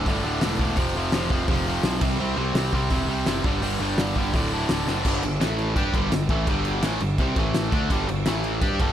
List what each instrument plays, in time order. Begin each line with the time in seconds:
0.06 picked electric bass G1, distorted electric guitar D2 A2 D3, kick, open hi-hat
0.25 picked electric bass D1, distorted electric guitar D2 A2 D3
0.41 picked electric bass E1, distorted electric guitar D2 A2 D3, snare, open hi-hat
0.59 distorted electric guitar D2 A2 D3, kick
0.76 picked electric bass F1, distorted electric guitar F2 C3 F3, kick, open hi-hat
0.96 picked electric bass F1, distorted electric guitar F2 C3 F3
1.12 picked electric bass F1, distorted electric guitar F2 C3 F3, snare, open hi-hat
1.30 picked electric bass F1, distorted electric guitar F2 C3 F3, kick
1.48 picked electric bass F1, distorted electric guitar F2 C3 F3, kick, open hi-hat
1.67 distorted electric guitar F2 C3 F3
1.83 picked electric bass B1, distorted electric guitar F2 C3 F3, snare, open hi-hat
2.01 picked electric bass C2, distorted electric guitar C3 G3 C4, kick, crash
2.19 picked electric bass C2, distorted electric guitar C3 G3 C4
2.37 picked electric bass C2, distorted electric guitar C3 G3 C4
2.54 picked electric bass C2, distorted electric guitar C3 G3 C4, snare, open hi-hat
2.73 picked electric bass C2, distorted electric guitar C3 G3 C4, kick
2.90 picked electric bass E1, distorted electric guitar C3 G3 C4, kick, open hi-hat
3.08 picked electric bass C2, distorted electric guitar C3 G3 C4
3.26 picked electric bass F#1, distorted electric guitar C3 G3 C4, snare, open hi-hat
3.44 picked electric bass G1, distorted electric guitar G2 D3 G3, kick
3.62 picked electric bass G1, distorted electric guitar G2 D3 G3, open hi-hat
3.80 picked electric bass G1, distorted electric guitar G2 D3 G3
3.98 picked electric bass G1, distorted electric guitar G2 D3 G3, snare, open hi-hat
4.16 picked electric bass G1, distorted electric guitar G2 D3 G3, kick
4.34 picked electric bass D1, distorted electric guitar D2 A2 D3, kick, open hi-hat
4.52 distorted electric guitar D2 A2 D3
4.69 picked electric bass D1, distorted electric guitar D2 A2 D3, snare, open hi-hat
4.87 picked electric bass F#1, distorted electric guitar D2 A2 D3, snare
5.05 picked electric bass G1, distorted electric guitar G2 D3 G3, kick, crash
5.23 picked electric bass G1, distorted electric guitar G2 D3, crash
5.40 picked electric bass A1, distorted electric guitar A2 E3 A3, snare, crash
5.58 crash
5.76 picked electric bass G2, distorted electric guitar G3 D4 G4, kick, crash
5.94 picked electric bass G1, distorted electric guitar G2 D3 G3, kick, crash
6.12 picked electric bass G1, distorted electric guitar G2 D3, snare, crash
6.29 picked electric bass A1, distorted electric guitar A2 E3 A3, kick, crash
6.47 picked electric bass G1, distorted electric guitar G2 D3 G3, kick, crash
6.65 crash
6.82 picked electric bass A1, distorted electric guitar A2 E3 A3, snare, crash
7.00 picked electric bass G1, distorted electric guitar G2 D3, crash
7.18 picked electric bass C2, distorted electric guitar C3 G3 C4, kick, crash
7.36 picked electric bass A1, distorted electric guitar A2 E3 A3, kick, crash
7.54 snare, crash
7.72 picked electric bass D2, distorted electric guitar D3 A3 D4, kick, crash
7.90 picked electric bass G1, distorted electric guitar G2 D3 G3, kick, crash
8.08 picked electric bass G1, distorted electric guitar G2 D3, crash
8.26 picked electric bass A1, distorted electric guitar A2 E3 A3, snare, crash
8.44 crash
8.61 picked electric bass G2, distorted electric guitar G3 D4 G4, kick, crash
8.80 picked electric bass G1, distorted electric guitar G2 D3 G3, kick, crash